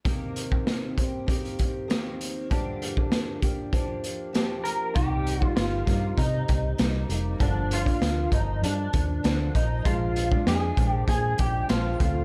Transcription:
0.04 C3 D#3 A#3 C4 G4, kick, closed hi-hat
0.36 closed hi-hat
0.52 kick
0.67 snare, closed hi-hat
0.97 C4 G4, kick, closed hi-hat
1.01 A#3
1.26 D#3 A#3 C4 G4, kick, closed hi-hat
1.45 closed hi-hat
1.59 kick, closed hi-hat
1.88 D#3 A#3 C4, snare, closed hi-hat
1.92 G4
2.21 closed hi-hat
2.50 G2 D3 F3 A#3 D4 G4, kick, closed hi-hat
2.82 closed hi-hat
2.97 kick
3.12 snare, closed hi-hat
3.41 A#3 D4 G4, kick, closed hi-hat
3.45 F3
3.73 F3 A#3 D4 G4, kick, closed hi-hat
4.04 closed hi-hat
4.33 F3 A#3 D4, snare, closed hi-hat
4.37 G4
4.64 A#4, closed hi-hat
4.94 C2 C3 G3 A#3 D#4 G4, kick, closed hi-hat
5.27 closed hi-hat
5.40 A#3 D#4, kick
5.44 G3 F4
5.56 G1 F4, snare, closed hi-hat
5.85 G2 C3 G3 A#3 D#4, kick, snare, closed hi-hat
6.18 C3 D#4, kick, closed hi-hat
6.48 C2, kick, closed hi-hat
6.77 C2 C3 G3 A#3 D#4, snare, closed hi-hat
7.08 F1 C3 G3 A#3 D#4, closed hi-hat
7.38 G1 G2 D3 F3 A#3 D4, kick, closed hi-hat
7.71 F4, closed hi-hat
7.85 A#3 D4, kick, closed hi-hat
7.89 F3
8.02 D2, snare, closed hi-hat
8.32 G1 F3 A#3 D#4, kick, closed hi-hat
8.62 G2 D4, closed hi-hat
8.93 D#2, kick, closed hi-hat
9.23 D2 D3 F3 A#3 D4, snare, closed hi-hat
9.55 A#1 F3 A#3 D#4, kick, closed hi-hat
9.84 A#1 A#2 F3 G#3 D4 F4, kick, closed hi-hat
10.16 closed hi-hat
10.31 G#3 D4, kick
10.35 F3
10.47 F2 G#4, snare, closed hi-hat
10.76 A#1 A#2 F3 G#3 D4, kick, closed hi-hat
10.88 G4
11.08 A#2 G#4, kick, closed hi-hat
11.38 A#1 G4, kick, closed hi-hat
11.69 A#1 A#2 F3 G#3 D4 F4, snare, closed hi-hat
12.00 D2 D3 A3 C4 F4, kick, closed hi-hat

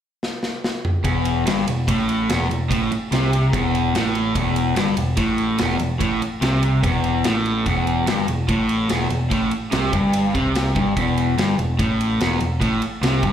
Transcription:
0.23 snare
0.43 snare
0.64 snare
0.85 mid tom
1.04 E1 E2, kick, ride
1.25 ride
1.46 G1 G2, snare, ride
1.68 E1 E2, ride
1.88 A1 A2, kick, ride
2.09 ride
2.29 E1 E2, snare, ride
2.50 E1 E2, ride
2.70 A1 A2, kick, ride
2.91 muted overdriven electric guitar stroke, muted picked electric bass stroke, ride
3.11 C2 C3, snare, ride
3.33 ride
3.53 E1 E2, kick, ride
3.75 ride
3.94 A1 A2, snare, ride
4.15 ride
4.35 E1 E2, kick, ride
4.56 ride
4.76 G1 G2, snare, ride
4.97 E1 E2, ride
5.17 A1 A2, kick, ride
5.38 ride
5.58 E1 E2, snare, ride
5.79 E1 E2, ride
5.99 A1 A2, kick, ride
6.21 muted overdriven electric guitar stroke, muted picked electric bass stroke, ride
6.41 C2 C3, snare, ride
6.63 ride
6.83 E1 E2, kick, ride
7.04 ride
7.24 A1 A2, snare, ride
7.46 ride
7.66 E1 E2, kick, ride
7.87 ride
8.07 G1 G2, snare, ride
8.28 E1 E2, ride
8.48 A1 A2, kick, ride
8.69 ride
8.89 E1 E2, snare, ride
9.10 E1 E2, ride
9.30 A1 A2, kick, ride
9.51 muted overdriven electric guitar stroke, muted picked electric bass stroke, ride
9.72 C2 C3, snare, ride
9.93 G1 G2, kick, ride
10.13 ride
10.34 C2 C3, kick, ride
10.55 snare, ride
10.75 G1 G2, kick, ride
10.97 E1 E2, kick, ride
11.17 ride
11.38 G1 G2, snare, ride
11.58 E1 E2, ride
11.79 A1 A2, kick, ride
12.01 ride
12.20 E1 E2, snare, ride
12.40 E1 E2, ride
12.61 A1 A2, kick, ride
12.81 muted overdriven electric guitar stroke, muted picked electric bass stroke, ride
13.01 C2 C3, snare, ride
13.23 G1 G2, kick, ride

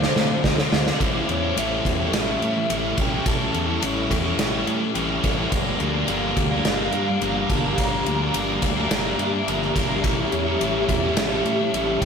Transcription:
Already playing: D3 A3 C4 D4 F4 C5 D5 F5 D6
0.02 snare
0.16 A2 A3, snare
0.44 D2 F4, kick, snare
0.58 snare
0.70 D2 A3 C4 D4 F4, snare
0.87 snare
1.00 A1 A2 E3 G3 C#4 E4 A4 G5 C#6, kick, ride
1.13 G3 C#4 E4
1.27 E2 E3 G3 C#4 E4 C#5, ride
1.43 G3 C#4 E4 A4
1.56 A1 A2 E3 G3 C#4 E4 A4 E5, ride
1.83 E2 E3 G3 C#4 E4 G4, muted overdriven electric guitar stroke, kick, ride
1.96 E4 A4
2.01 G3 C#4 E4
2.13 A1 E5, snare, ride
2.25 E4 A4
2.29 G3 C#4 E4
2.42 A2 G3 A3 C#4 E4 A4, ride
2.53 G3 C#4 E4, muted overdriven electric guitar stroke
2.70 A1 A2 E3 G3 C#4 E4 A4, ride
2.96 A1 E3 G3 A3 C#4 G5, kick, ride
3.00 E4 A4
3.12 G3 C#4 E4 A4
3.26 A1 A2 E3 G3 C#4 E4 A4 A5, kick, ride
3.38 G3 C#4 E4
3.53 E2 E3 G3 C#4 E4, ride
3.68 G3 C#4 E4 A4
3.82 A1 A2 E3 G3 C#4 E4 A4, ride
4.10 E2 E3 G3 C#4 E4 G4, muted overdriven electric guitar stroke, kick, ride
4.24 G3 C#4 E4 A4
4.39 A1 C#4, snare, ride
4.53 G3 C#4 E4 A4
4.67 A2 G3 A3 C#4 E4 A4, ride
4.80 G3 C#4 E4, muted overdriven electric guitar stroke
4.95 A1 A2 E3 G3 C#4 E4 A4, ride
5.22 A1 E3 G3 A3 C#4 E4, kick, ride
5.27 A4
5.38 G3 C#4 E4 A4
5.52 G1 G2 D3 F3 G3 A#3 D4 G4 A#4 F5 A#5, kick, ride
5.64 G3 A#3 D4
5.78 D2 D3 F3 G3 A#3 D4 D5, ride
5.93 D4 A#4
5.97 G3 A#3 D4
6.08 G1 G2 D3 G3 A#3 D4 F5, ride
6.12 A#4
6.35 D2 D3 G3 A#3 D4 G4, muted overdriven electric guitar stroke, kick, ride
6.51 G3 A#3 D4 A#4
6.64 G1 D4 F5, snare, ride
6.77 D4 A#4
6.81 G3 A#3 D4
6.92 G2 G3 A#3 D4, ride
6.97 A#4
7.06 G3 A#3 D4, muted overdriven electric guitar stroke
7.21 G1 G2 D3 F3 G3 A#3 D4 A#4, ride
7.48 G1 D3 G3 A#3 D4 A5, kick, ride
7.53 A#4
7.64 G3 A#3 D4 A#4
7.77 G1 G2 D3 F3 G3 A#3 E5 A#5, kick, ride
7.81 D4 A#4
7.90 G3 A#3 D4
8.04 D2 D3 F3 G3 A#3 D4, ride
8.18 D4 A#4
8.22 G3 A#3 D4
8.34 G1 G2 D3 G3 A#3 D4 A#4, ride
8.61 D2 D3 G3 A#3 D4 G4, muted overdriven electric guitar stroke, kick, ride
8.75 D4 A#4
8.79 G3 A#3 D4
8.91 G1 D4, snare, ride
9.05 G3 A#3 D4 A#4
9.18 G2 G3 A#3 D4 A#4, ride
9.31 G3 A#3 D4, muted overdriven electric guitar stroke
9.47 G1 G2 D3 F3 G3 A#3 D4 A#4, ride
9.62 snare
9.74 G1 D3 G3 A#3 D4, kick, ride
9.79 A#4
9.90 G3 A#3 D4 A#4
10.03 A1 A2 E3 G3 C#4 E4 A4 C#5 A5, kick, ride
10.16 G3 C#4 E4
10.31 E2 E3 G3 C#4 E4 C#5, ride
10.46 G3 C#4 E4 A4
10.59 A1 A2 E3 G3 C#4 E4 E5, ride
10.64 A4
10.87 E2 E3 G3 C#4 E4 G4, muted overdriven electric guitar stroke, kick, ride
11.03 G3 C#4 E4 A4
11.15 A1 C#4 E5, snare, ride
11.31 G3 C#4 E4 A4
11.45 A2 G3 A3 C#4 E4 A4, ride
11.58 G3 C#4 E4, muted overdriven electric guitar stroke
11.73 A1 A2 E3 G3 C#4 E4 A4, ride
12.01 A1 E3 G3 G5, kick, ride

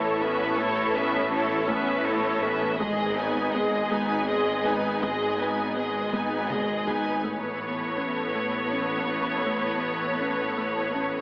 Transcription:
Already playing: A1 A2 E3 A3 B3 E4 A4 C#5
0.20 B3 C#4 A4 B4 E5
0.57 A1 A2 A3 E4 A4 C#5
0.95 B3 C#4 B4 E5
1.31 A3 C#4 E4 A4 C#5
1.68 A1 A2 A3 B3 C#4 B4 E5
2.05 A3 E4 A4 C#5
2.42 B3 C#4 A4 B4 E5
2.79 G#1 G#2 D#3 G#3 B3 G#4 D#5, taiko
3.16 B3 D#4 B4 G#5
3.53 G#3 B3 G#4 D#5
3.90 G#1 G#2 G#3 B3 D#4 B4 G#5
4.27 G#3 G#4 D#5
4.64 B3 D#4 G#4 B4 G#5
5.02 G#1 G#2 G#3 G#4 D#5, taiko
5.38 B3 D#4 B4 G#5
5.76 G#3 B3 G#4 D#5
6.12 G#1 G#2 G#3 B3 D#4 B4 G#5, taiko high
6.50 G#3 G#4 D#5, taiko mid
6.87 B3 D#4 G#4 B4 G#5, taiko low
7.23 A1 A2 E3 A3 B3 A4 B4 C#5, taiko
7.98 C#4
8.35 A3
8.72 C#4
9.09 C#4
9.47 A3
10.21 C#4
10.58 A3
10.95 C#4

